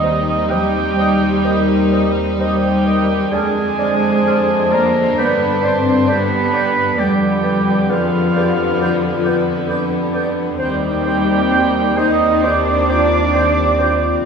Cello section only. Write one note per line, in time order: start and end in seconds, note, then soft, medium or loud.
0.00 0.47 D#3 medium
0.49 2.38 G3 medium
2.40 3.30 G3 medium
3.33 4.72 G#3 medium
4.73 5.18 A#3 medium
5.18 5.64 B3 medium
5.64 6.09 C4 medium
6.09 6.99 B3 medium
6.99 7.90 G3 medium
7.90 9.70 F3 medium
10.60 11.94 G3 medium
11.98 12.43 D#4 medium
12.44 14.25 D4 medium